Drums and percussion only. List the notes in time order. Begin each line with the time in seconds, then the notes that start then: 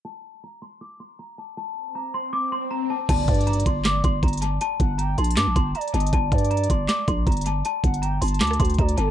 3.09 kick, closed hi-hat, crash
3.28 kick, closed hi-hat
3.34 closed hi-hat
3.41 closed hi-hat
3.47 closed hi-hat
3.53 closed hi-hat
3.60 closed hi-hat
3.66 kick, closed hi-hat
3.85 snare, clap, closed hi-hat
4.04 kick, closed hi-hat
4.23 kick, closed hi-hat
4.28 closed hi-hat
4.33 closed hi-hat
4.37 closed hi-hat
4.42 closed hi-hat
4.61 closed hi-hat
4.80 kick, closed hi-hat
4.99 closed hi-hat
5.18 closed hi-hat
5.24 closed hi-hat
5.31 closed hi-hat
5.37 snare, clap, closed hi-hat
5.56 kick, closed hi-hat
5.75 closed hi-hat
5.81 closed hi-hat
5.88 closed hi-hat
5.94 closed hi-hat
6.00 closed hi-hat
6.07 closed hi-hat
6.13 kick, closed hi-hat
6.32 kick, closed hi-hat
6.38 closed hi-hat
6.45 closed hi-hat
6.51 closed hi-hat
6.57 closed hi-hat
6.64 closed hi-hat
6.70 kick, closed hi-hat
6.89 snare, clap, closed hi-hat
7.08 kick, closed hi-hat
7.27 kick, closed hi-hat
7.32 closed hi-hat
7.37 closed hi-hat
7.41 closed hi-hat
7.46 closed hi-hat
7.65 closed hi-hat
7.84 kick, closed hi-hat
7.94 closed hi-hat
8.03 closed hi-hat
8.22 closed hi-hat, open hi-hat
8.28 closed hi-hat
8.34 closed hi-hat
8.40 snare, clap, closed hi-hat
8.47 cross-stick, closed hi-hat
8.53 closed hi-hat
8.60 kick, closed hi-hat
8.65 closed hi-hat
8.70 closed hi-hat
8.74 closed hi-hat
8.78 kick, closed hi-hat
8.89 closed hi-hat
8.98 closed hi-hat